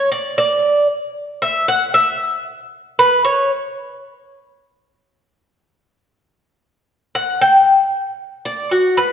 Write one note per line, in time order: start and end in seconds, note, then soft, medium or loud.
0.00 0.11 C#5 medium
0.12 0.37 D5 medium
0.38 0.86 D5 medium
1.42 1.67 E5 medium
1.68 1.94 F#5 loud
1.94 2.43 E5 loud
2.99 3.24 B4 medium
3.25 3.50 C#5 medium
7.15 7.41 F#5 medium
7.41 7.57 G5 medium
8.45 8.71 D5 medium
8.71 8.97 F#4 medium
8.97 9.12 B4 medium